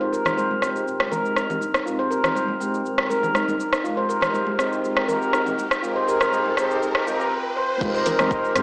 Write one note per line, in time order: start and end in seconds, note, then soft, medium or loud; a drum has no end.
0.00 0.18 F1 loud
0.00 0.23 G#3 medium
0.00 0.23 C4 medium
0.00 0.23 D#4 medium
0.00 0.23 G4 medium
0.00 0.23 A#4 medium
0.00 0.11 C5 medium
0.00 riser medium
0.12 0.24 A#4 loud
0.12 shaker medium
0.25 0.55 F1 medium
0.25 0.59 G#3 medium
0.25 0.59 C4 medium
0.25 0.59 D#4 medium
0.25 0.59 G4 medium
0.25 0.59 A#4 medium
0.25 0.36 C5 medium
0.25 cross-stick medium
0.25 low conga loud
0.25 shaker soft
0.37 0.44 C5 loud
0.37 high conga medium
0.37 shaker medium
0.51 high conga medium
0.62 0.78 F1 medium
0.62 0.84 G#3 medium
0.62 0.74 C4 medium
0.62 0.84 C4 medium
0.62 0.84 D#4 medium
0.62 0.84 G4 medium
0.62 0.84 C5 loud
0.62 cross-stick medium
0.62 mid tom medium
0.62 shaker medium
0.76 shaker soft
0.87 1.13 D#1 medium
0.87 1.09 G#3 medium
0.87 1.09 C4 medium
0.87 1.09 D#4 medium
0.87 1.09 G4 medium
0.87 1.09 A#4 medium
0.87 shaker soft
1.00 cross-stick loud
1.00 mid tom medium
1.11 1.42 F1 medium
1.11 1.47 G#3 medium
1.11 1.47 C4 medium
1.11 1.47 D#4 medium
1.11 1.47 G4 medium
1.11 1.23 A#4 medium
1.11 1.47 A#4 loud
1.11 high conga medium
1.11 low conga loud
1.11 shaker medium
1.26 shaker soft
1.36 1.48 D#4 medium
1.36 cross-stick medium
1.36 shaker soft
1.50 1.79 F1 loud
1.50 1.57 G#3 medium
1.50 1.57 C4 medium
1.50 1.57 D#4 medium
1.50 1.57 G4 medium
1.50 1.57 A#4 loud
1.50 low conga loud
1.50 shaker soft
1.61 mid tom medium
1.61 high conga medium
1.61 shaker medium
1.74 cross-stick loud
1.74 shaker soft
1.86 2.16 F1 loud
1.86 2.21 G#3 medium
1.86 2.21 C4 medium
1.86 2.21 D#4 medium
1.86 1.93 F4 medium
1.86 2.21 G4 medium
1.86 2.21 A#4 medium
1.86 shaker medium
1.99 2.10 C5 loud
2.11 2.23 A#4 loud
2.11 shaker loud
2.24 2.54 F1 medium
2.24 2.58 G#3 medium
2.24 2.58 C4 medium
2.24 2.58 D#4 medium
2.24 2.58 G4 medium
2.24 2.58 A#4 loud
2.24 2.34 C5 medium
2.24 cross-stick loud
2.24 low conga loud
2.24 shaker soft
2.35 2.43 C5 loud
2.35 high conga medium
2.35 shaker medium
2.48 high conga loud
2.60 2.77 F1 loud
2.60 2.82 G#3 medium
2.60 2.72 C4 medium
2.60 2.82 C4 medium
2.60 2.82 D#4 medium
2.60 2.82 G4 medium
2.60 2.83 C5 loud
2.60 mid tom medium
2.60 shaker loud
2.74 shaker soft
2.85 3.11 D#1 medium
2.85 3.07 G#3 medium
2.85 3.07 C4 medium
2.85 3.07 D#4 medium
2.85 3.07 G4 medium
2.85 3.07 A#4 medium
2.85 shaker medium
2.98 cross-stick loud
3.10 3.40 F1 medium
3.10 3.45 G#3 medium
3.10 3.45 C4 medium
3.10 3.45 D#4 medium
3.10 3.45 G4 medium
3.10 3.22 A#4 loud
3.10 3.45 A#4 medium
3.10 high conga medium
3.10 shaker loud
3.23 high conga medium
3.23 low conga loud
3.23 shaker soft
3.34 3.47 D#4 medium
3.34 cross-stick medium
3.34 high conga medium
3.34 shaker medium
3.48 3.77 F1 loud
3.48 3.55 G#3 medium
3.48 3.55 C4 medium
3.48 3.55 D#4 medium
3.48 3.55 G4 medium
3.48 3.55 A#4 loud
3.48 mid tom medium
3.48 high conga loud
3.48 shaker soft
3.60 shaker medium
3.73 cross-stick loud
3.73 shaker soft
3.84 4.14 F1 loud
3.84 4.19 G#3 medium
3.84 4.19 C4 medium
3.84 4.19 D#4 medium
3.84 3.91 F4 medium
3.84 4.19 G4 medium
3.84 4.19 A#4 medium
3.84 shaker medium
3.97 4.08 C5 loud
4.09 4.21 A#4 loud
4.09 shaker loud
4.21 4.52 F1 medium
4.21 4.56 G#3 medium
4.21 4.56 C4 medium
4.21 4.56 D#4 medium
4.21 4.56 G4 medium
4.21 4.56 A#4 medium
4.21 4.32 C5 medium
4.21 cross-stick loud
4.21 low conga loud
4.21 shaker soft
4.33 4.41 C5 loud
4.33 high conga medium
4.33 shaker medium
4.47 high conga loud
4.59 4.75 F1 loud
4.59 4.81 G#3 medium
4.59 4.71 C4 medium
4.59 4.81 C4 medium
4.59 4.81 D#4 medium
4.59 4.81 G4 medium
4.59 4.81 C5 loud
4.59 cross-stick medium
4.59 mid tom medium
4.59 shaker medium
4.73 shaker soft
4.84 5.10 D#1 medium
4.84 5.06 G#3 medium
4.84 5.06 C4 medium
4.84 5.06 D#4 medium
4.84 5.06 G4 medium
4.84 5.06 A#4 medium
4.84 shaker medium
4.97 cross-stick loud
4.97 mid tom medium
5.08 5.39 F1 medium
5.08 5.43 G#3 medium
5.08 5.43 C4 medium
5.08 5.43 D#4 medium
5.08 5.43 G4 medium
5.08 5.20 A#4 loud
5.08 5.43 A#4 loud
5.08 high conga medium
5.08 low conga loud
5.08 shaker loud
5.22 shaker soft
5.33 5.45 D#4 medium
5.33 cross-stick medium
5.33 shaker medium
5.46 5.76 F1 medium
5.46 5.54 G#3 medium
5.46 5.54 C4 medium
5.46 5.54 D#4 medium
5.46 5.54 G4 medium
5.46 5.54 A#4 loud
5.46 low conga loud
5.46 shaker soft
5.58 mid tom medium
5.58 high conga medium
5.58 shaker loud
5.71 cross-stick medium
5.71 shaker soft
5.83 6.13 F1 loud
5.83 6.18 G#3 medium
5.83 6.18 C4 medium
5.83 6.18 D#4 medium
5.83 5.90 F4 medium
5.83 6.18 G4 medium
5.83 6.18 A#4 loud
5.83 shaker medium
5.96 6.06 C5 loud
6.07 6.19 A#4 loud
6.07 shaker loud
6.20 6.50 F1 medium
6.20 6.55 G#3 medium
6.20 6.54 C4 medium
6.20 6.55 D#4 medium
6.20 6.55 G4 medium
6.20 6.55 A#4 loud
6.20 6.31 C5 medium
6.20 cross-stick medium
6.20 low conga loud
6.20 shaker soft
6.32 6.39 C5 loud
6.32 high conga medium
6.32 shaker medium
6.46 high conga loud
6.57 6.73 F1 loud
6.57 6.79 G#3 loud
6.57 6.69 C4 medium
6.57 6.79 C4 medium
6.57 6.79 D#4 medium
6.57 6.79 G4 medium
6.57 6.79 C5 loud
6.57 cross-stick medium
6.57 mid tom medium
6.57 shaker medium
6.71 shaker soft
6.82 6.98 D#1 medium
6.82 7.04 G#3 medium
6.82 7.04 C4 medium
6.82 7.04 D#4 medium
6.82 7.04 G4 medium
6.82 7.04 A#4 medium
6.82 shaker medium
6.95 cross-stick loud
7.07 7.32 C2 loud
7.07 7.32 G#3 medium
7.07 7.32 C4 medium
7.07 7.32 D#4 medium
7.07 7.19 F4 medium
7.07 7.32 G4 medium
7.07 7.32 A#4 loud
7.07 high conga medium
7.07 shaker loud
7.20 high conga medium
7.20 low conga loud
7.20 shaker soft
7.32 7.44 C4 medium
7.56 7.69 C5 loud
7.56 high tom medium
7.70 mid tom medium
7.81 8.11 F1 loud
7.81 8.16 G#3 medium
7.81 8.16 C4 medium
7.81 8.16 D#4 medium
7.81 7.88 F4 medium
7.81 8.16 G4 medium
7.81 8.16 A#4 loud
7.81 kick loud
7.81 crash loud
7.81 high conga medium
7.81 shaker medium
7.95 8.05 C5 loud
7.95 shaker soft
8.06 8.18 A#4 loud
8.06 open hi-hat loud
8.06 low conga loud
8.06 shaker medium
8.19 8.49 F1 medium
8.19 8.53 G#3 medium
8.19 8.53 C4 medium
8.19 8.53 D#4 medium
8.19 8.53 G4 medium
8.19 8.53 A#4 medium
8.19 8.29 C5 medium
8.19 cross-stick loud
8.19 high conga medium
8.19 low conga loud
8.19 shaker soft
8.31 8.38 C5 loud
8.31 kick loud
8.31 shaker medium
8.45 shaker soft
8.55 8.62 F1 medium
8.55 8.62 G#3 medium
8.55 8.62 C4 medium
8.55 8.62 D#4 medium
8.55 8.62 G4 medium
8.55 8.62 C5 loud
8.55 cross-stick medium
8.55 mid tom medium
8.55 open hi-hat medium
8.55 high conga medium
8.55 shaker medium